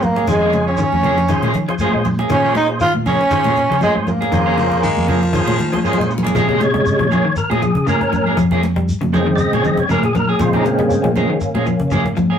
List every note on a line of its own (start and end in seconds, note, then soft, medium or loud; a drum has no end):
0.00 0.22 G#2 medium
0.00 0.11 G#3 medium
0.00 0.28 A#3 medium
0.00 muted clean electric guitar stroke soft
0.00 high conga medium
0.00 low conga medium
0.00 shekere soft
0.04 0.29 A#3 medium
0.16 0.31 A#3 soft
0.16 0.31 C#4 soft
0.16 0.30 G#4 medium
0.16 cajon slap medium
0.16 high conga medium
0.27 0.81 F2 medium
0.27 0.48 D#3 medium
0.27 0.64 G#3 medium
0.27 0.65 G#3 medium
0.27 0.84 C#4 medium
0.27 0.84 F4 medium
0.27 0.85 G#4 medium
0.27 0.85 C#5 medium
0.27 cajon bass medium
0.27 high conga soft
0.27 shekere loud
0.41 0.52 A#3 medium
0.41 0.52 C#4 medium
0.41 0.53 G#4 medium
0.52 0.74 C#3 medium
0.52 muted clean electric guitar stroke soft
0.52 high conga loud
0.52 shekere soft
0.67 1.64 C#4 medium
0.67 1.65 C#4 loud
0.67 muted clean electric guitar stroke soft
0.77 0.99 D#3 medium
0.77 high conga soft
0.77 shekere loud
0.92 1.34 F2 medium
0.92 muted clean electric guitar stroke soft
0.92 high conga medium
1.03 1.24 C#3 medium
1.03 1.18 F3 medium
1.03 1.18 A#3 medium
1.03 1.18 C#4 medium
1.03 1.17 G#4 medium
1.03 cajon bass medium
1.03 low conga medium
1.03 shekere soft
1.18 muted clean electric guitar stroke soft
1.18 cajon slap medium
1.28 1.50 D#3 medium
1.28 1.50 C#4 medium
1.28 1.50 F4 medium
1.28 1.51 G#4 medium
1.28 1.51 C5 medium
1.28 muted clean electric guitar stroke soft
1.28 cajon bass medium
1.28 shekere medium
1.43 1.52 A#2 medium
1.43 1.54 F3 medium
1.43 1.54 A#3 medium
1.43 1.54 C#4 medium
1.43 1.55 G#4 medium
1.43 cajon bass medium
1.43 high conga loud
1.54 1.65 D#3 medium
1.54 muted clean electric guitar stroke soft
1.54 cajon bass medium
1.54 cajon slap medium
1.54 low conga medium
1.54 shekere soft
1.68 1.89 F3 medium
1.68 1.74 C#4 loud
1.68 1.75 F4 medium
1.68 1.75 G#4 loud
1.68 1.75 C5 loud
1.68 cajon slap medium
1.79 1.94 F3 medium
1.79 1.93 A#3 medium
1.79 2.08 C#4 medium
1.79 1.93 C#4 medium
1.79 2.08 F4 medium
1.79 2.08 G#4 medium
1.79 1.93 G#4 medium
1.79 2.09 C5 loud
1.79 muted fingered electric bass stroke soft
1.79 high conga loud
1.79 low conga medium
1.79 shekere loud
1.93 2.24 A#2 medium
1.93 2.14 G#3 medium
1.93 muted clean electric guitar stroke medium
2.04 muted clean electric guitar stroke soft
2.04 high conga medium
2.04 low conga medium
2.04 shekere soft
2.19 2.34 A#3 soft
2.19 2.33 C#4 soft
2.19 2.33 G#4 medium
2.19 cajon slap medium
2.19 high conga medium
2.29 2.83 A#2 loud
2.29 2.50 D#3 medium
2.29 2.86 C#4 medium
2.29 2.54 C#4 medium
2.29 2.55 C#4 loud
2.29 2.86 F4 medium
2.29 2.87 G#4 medium
2.29 2.87 C5 medium
2.29 cajon bass loud
2.29 cajon slap soft
2.29 high conga soft
2.29 shekere loud
2.44 2.55 F3 medium
2.44 2.55 A#3 medium
2.44 2.55 C#4 medium
2.44 2.56 G#4 medium
2.55 2.68 D#4 loud
2.55 2.68 D#4 medium
2.55 muted clean electric guitar stroke soft
2.55 high conga medium
2.55 shekere soft
2.70 muted clean electric guitar stroke soft
2.80 3.01 D#3 medium
2.80 2.93 F4 loud
2.80 2.93 F4 medium
2.80 high conga soft
2.80 shekere loud
2.94 3.16 A#2 medium
2.94 muted clean electric guitar stroke soft
2.94 high conga medium
3.06 3.27 C#3 medium
3.06 3.20 F3 medium
3.06 3.19 A#3 medium
3.06 3.19 C#4 medium
3.06 3.78 C#4 loud
3.06 3.79 C#4 loud
3.06 3.19 G#4 medium
3.06 cajon bass medium
3.06 cajon slap soft
3.06 low conga medium
3.06 shekere soft
3.20 muted clean electric guitar stroke soft
3.20 cajon slap medium
3.30 3.52 D#3 medium
3.30 3.52 C#4 medium
3.30 3.52 F4 medium
3.30 3.53 G#4 medium
3.30 3.53 C5 medium
3.30 muted clean electric guitar stroke soft
3.30 cajon bass medium
3.30 cajon slap soft
3.30 shekere loud
3.44 3.66 A#2 loud
3.44 3.56 F3 medium
3.44 3.56 A#3 medium
3.44 3.56 C#4 medium
3.44 3.57 G#4 medium
3.44 cajon bass medium
3.44 high conga loud
3.56 muted clean electric guitar stroke soft
3.56 cajon bass medium
3.56 cajon slap medium
3.56 shekere soft
3.69 3.80 C#3 medium
3.69 3.91 F3 medium
3.69 3.76 C#4 medium
3.69 3.77 F4 medium
3.69 3.77 G#4 medium
3.69 3.77 C5 medium
3.69 cajon slap medium
3.81 3.96 F3 medium
3.81 3.94 G#3 medium
3.81 3.96 A#3 medium
3.81 4.10 C#4 medium
3.81 3.96 C#4 medium
3.81 4.10 F4 medium
3.81 4.10 G#4 medium
3.81 3.95 G#4 medium
3.81 4.10 C5 medium
3.81 high conga loud
3.81 low conga medium
3.81 shekere medium
3.95 4.26 G#2 medium
3.95 4.16 G#3 medium
3.95 muted clean electric guitar stroke soft
4.07 5.56 A#3 medium
4.07 muted clean electric guitar stroke soft
4.07 high conga medium
4.07 low conga medium
4.07 shekere soft
4.21 4.36 A#3 soft
4.21 4.36 C#4 medium
4.21 4.35 G#4 medium
4.21 cajon slap medium
4.21 high conga medium
4.32 4.86 F2 loud
4.32 4.53 D#3 medium
4.32 4.88 C#4 medium
4.32 4.89 F4 medium
4.32 4.89 G#4 medium
4.32 4.89 C5 loud
4.32 cajon bass medium
4.32 high conga soft
4.32 shekere loud
4.46 4.55 F3 medium
4.46 4.56 A#3 medium
4.46 4.56 C#4 medium
4.46 4.56 G#4 medium
4.57 4.78 C#3 medium
4.57 4.82 F3 medium
4.57 muted clean electric guitar stroke soft
4.57 high conga medium
4.57 shekere soft
4.71 muted clean electric guitar stroke soft
4.71 cajon bass medium
4.83 5.04 D#3 medium
4.83 5.10 G#3 loud
4.83 high conga soft
4.83 shekere loud
4.96 5.39 F2 loud
4.96 muted clean electric guitar stroke soft
4.96 high conga medium
5.07 5.28 C#3 medium
5.07 5.22 F3 medium
5.07 5.84 F3 loud
5.07 5.21 A#3 medium
5.07 5.21 C#4 medium
5.07 5.20 G#4 medium
5.07 cajon bass medium
5.07 low conga medium
5.07 shekere soft
5.21 muted clean electric guitar stroke soft
5.21 cajon slap medium
5.33 5.54 D#3 medium
5.33 5.55 C#4 medium
5.33 5.55 F4 medium
5.33 5.55 G#4 medium
5.33 5.56 C5 loud
5.33 muted clean electric guitar stroke soft
5.33 cajon bass medium
5.33 shekere medium
5.46 5.57 A#2 loud
5.46 5.58 F3 medium
5.46 5.58 A#3 medium
5.46 5.58 C#4 medium
5.46 5.58 G#4 medium
5.46 cajon bass medium
5.46 high conga loud
5.59 5.70 D#3 medium
5.59 muted clean electric guitar stroke soft
5.59 cajon bass medium
5.59 cajon slap medium
5.59 high conga loud
5.59 shekere soft
5.72 5.93 F3 medium
5.72 5.79 C#4 medium
5.72 5.79 F4 medium
5.72 5.79 G#4 medium
5.72 5.80 C5 loud
5.72 cajon slap medium
5.72 high conga loud
5.83 6.11 A#2 medium
5.83 5.98 F3 medium
5.83 5.98 A#3 medium
5.83 6.12 C#4 medium
5.83 5.98 C#4 medium
5.83 6.12 F4 medium
5.83 6.13 G#4 medium
5.83 5.97 G#4 medium
5.83 6.13 C5 medium
5.83 muted fingered electric bass stroke soft
5.83 cajon slap soft
5.83 high conga medium
5.83 shekere medium
5.93 low conga medium
5.98 6.29 A#2 medium
5.98 6.19 G#3 medium
5.98 muted clean electric guitar stroke medium
5.98 low conga medium
6.09 6.35 C#3 medium
6.09 muted clean electric guitar stroke soft
6.09 cajon slap soft
6.09 shekere soft
6.18 low conga medium
6.23 6.34 A#3 soft
6.23 6.34 C#4 medium
6.23 6.34 G#4 medium
6.23 cajon slap medium
6.23 low conga loud
6.34 6.89 A#2 loud
6.34 7.07 C3 medium
6.34 7.07 C#3 medium
6.34 6.48 F3 medium
6.34 6.56 F3 medium
6.34 7.07 G#3 medium
6.34 6.48 A#3 loud
6.34 6.47 C#4 loud
6.34 6.47 G#4 loud
6.34 cajon bass loud
6.34 high conga soft
6.34 shekere medium
6.48 6.59 F3 medium
6.48 6.60 A#3 medium
6.48 6.60 C#4 medium
6.48 6.60 G#4 medium
6.48 cajon bass medium
6.58 6.61 C5 medium
6.58 muted clean electric guitar stroke soft
6.58 cajon slap medium
6.58 high conga loud
6.58 shekere soft
6.62 7.35 C#5 loud
6.74 6.95 G3 medium
6.74 muted clean electric guitar stroke soft
6.74 cajon bass medium
6.74 cajon slap soft
6.86 cajon slap soft
6.86 high conga soft
6.86 shekere loud
6.99 7.20 A#2 medium
6.99 7.20 F3 medium
6.99 muted clean electric guitar stroke soft
6.99 cajon bass medium
6.99 high conga medium
7.10 7.25 F3 medium
7.10 7.24 A#3 medium
7.10 7.24 C#4 medium
7.10 7.24 G#4 medium
7.10 cajon slap soft
7.10 low conga loud
7.10 shekere soft
7.25 7.45 D#3 medium
7.25 muted clean electric guitar stroke soft
7.25 cajon slap soft
7.36 7.50 A#4 medium
7.36 muted clean electric guitar stroke soft
7.36 cajon slap soft
7.36 high conga soft
7.36 shekere medium
7.50 7.71 A#2 loud
7.50 7.61 F3 medium
7.50 7.61 A#3 medium
7.50 7.61 C#4 medium
7.50 7.61 G#4 medium
7.50 7.87 G#4 medium
7.50 high conga loud
7.61 7.82 F3 medium
7.61 muted clean electric guitar stroke soft
7.61 cajon slap soft
7.61 low conga medium
7.61 shekere soft
7.75 7.85 C#3 loud
7.75 cajon bass medium
7.87 8.07 C#3 medium
7.87 8.01 F3 medium
7.87 8.01 A#3 medium
7.87 8.00 C#4 medium
7.87 8.35 C#4 loud
7.87 8.00 G#4 medium
7.87 8.37 A#4 loud
7.87 high conga loud
7.87 shekere loud
8.01 8.31 G#2 medium
8.01 muted clean electric guitar stroke medium
8.01 cajon slap medium
8.12 8.33 F3 medium
8.12 muted clean electric guitar stroke soft
8.12 high conga medium
8.12 low conga loud
8.12 shekere soft
8.26 8.41 A#3 soft
8.26 8.41 C#4 medium
8.26 8.40 G#4 medium
8.26 cajon slap soft
8.26 high conga medium
8.37 8.91 F2 loud
8.37 8.58 F3 loud
8.37 cajon bass medium
8.37 shekere loud
8.51 8.61 F3 medium
8.51 8.61 A#3 medium
8.51 8.61 C#4 medium
8.51 8.62 G#4 medium
8.51 cajon bass medium
8.62 muted clean electric guitar stroke soft
8.62 cajon slap medium
8.62 high conga loud
8.62 shekere soft
8.76 8.97 G3 medium
8.76 muted clean electric guitar stroke medium
8.76 cajon bass medium
8.76 cajon slap soft
8.88 cajon slap soft
8.88 high conga soft
8.88 shekere loud
9.01 9.44 F2 medium
9.01 9.22 C#3 medium
9.01 muted clean electric guitar stroke soft
9.01 cajon bass medium
9.01 high conga loud
9.12 9.85 C#3 medium
9.12 9.27 F3 medium
9.12 9.85 G#3 medium
9.12 9.27 A#3 medium
9.12 9.86 C4 medium
9.12 9.27 C#4 medium
9.12 9.27 G#4 medium
9.12 cajon slap soft
9.12 low conga medium
9.12 shekere soft
9.27 9.47 D#3 medium
9.27 muted clean electric guitar stroke soft
9.27 cajon slap soft
9.36 9.39 D5 medium
9.36 muted clean electric guitar stroke soft
9.36 shekere loud
9.40 9.52 D#5 loud
9.52 9.62 A#2 loud
9.52 9.64 F3 medium
9.52 9.64 A#3 medium
9.52 9.64 C#4 medium
9.52 9.64 G#4 medium
9.52 9.64 C#5 medium
9.52 high conga loud
9.63 9.75 D#3 medium
9.63 9.84 F3 medium
9.63 9.78 D#5 loud
9.63 muted clean electric guitar stroke soft
9.63 low conga medium
9.63 shekere soft
9.77 9.89 C#5 loud
9.77 cajon bass medium
9.89 10.10 C#3 loud
9.89 10.03 F3 medium
9.89 10.03 A#3 medium
9.89 10.03 C#4 medium
9.89 10.03 G#4 medium
9.89 10.03 A#4 loud
9.89 muted fingered electric bass stroke soft
9.89 high conga loud
9.89 low conga medium
9.89 shekere loud
10.02 10.33 A#2 medium
10.02 10.15 G#4 loud
10.02 muted clean electric guitar stroke soft
10.02 cajon slap medium
10.15 10.35 F3 medium
10.15 10.28 A#4 loud
10.15 muted clean electric guitar stroke soft
10.15 high conga medium
10.15 low conga loud
10.15 shekere soft
10.28 10.43 A#3 soft
10.28 10.43 C#4 soft
10.28 10.43 G#4 medium
10.28 10.40 G#4 loud
10.28 cajon slap soft
10.39 10.93 A#2 loud
10.39 11.12 C#3 medium
10.39 10.61 F3 loud
10.39 11.12 G#3 medium
10.39 11.12 C4 medium
10.39 10.53 F4 medium
10.39 cajon bass loud
10.39 shekere medium
10.53 10.64 F3 medium
10.53 10.64 A#3 medium
10.53 10.65 C#4 medium
10.53 10.64 D#4 medium
10.53 10.65 G#4 medium
10.53 cajon bass medium
10.65 12.13 A#3 loud
10.65 12.13 C#4 loud
10.65 muted clean electric guitar stroke soft
10.65 cajon slap medium
10.65 high conga loud
10.65 shekere soft
10.79 11.00 G3 medium
10.79 muted clean electric guitar stroke soft
10.79 cajon bass medium
10.90 cajon slap soft
10.90 shekere loud
11.04 11.25 A#2 medium
11.04 11.25 F3 medium
11.04 muted clean electric guitar stroke soft
11.04 cajon bass medium
11.04 high conga medium
11.15 11.38 C#3 medium
11.15 11.30 F3 medium
11.15 11.39 G#3 soft
11.15 11.29 A#3 medium
11.15 11.39 C4 medium
11.15 11.29 C#4 medium
11.15 11.29 G#4 medium
11.15 low conga loud
11.15 shekere soft
11.30 11.50 D#3 medium
11.30 muted clean electric guitar stroke medium
11.41 muted clean electric guitar stroke medium
11.41 shekere medium
11.54 11.75 A#2 loud
11.54 11.66 F3 medium
11.54 11.66 A#3 medium
11.54 11.66 C#4 medium
11.54 11.66 G#4 medium
11.54 high conga loud
11.66 11.87 F3 medium
11.66 muted clean electric guitar stroke soft
11.66 cajon slap soft
11.66 low conga medium
11.66 shekere soft
11.80 11.89 C#3 loud
11.80 cajon bass medium
11.91 12.12 C#3 medium
11.91 12.05 F3 medium
11.91 12.05 A#3 medium
11.91 12.05 C#4 medium
11.91 12.04 G#4 medium
11.91 high conga loud
11.91 low conga medium
11.91 shekere medium
12.05 12.35 G#2 medium
12.05 muted clean electric guitar stroke medium
12.05 cajon slap medium
12.16 12.37 F3 medium
12.16 muted clean electric guitar stroke soft
12.16 cajon slap soft
12.16 high conga medium
12.16 low conga loud
12.16 shekere soft
12.30 12.39 A#3 soft
12.30 12.39 C#4 medium
12.30 12.39 G#4 medium
12.30 cajon slap soft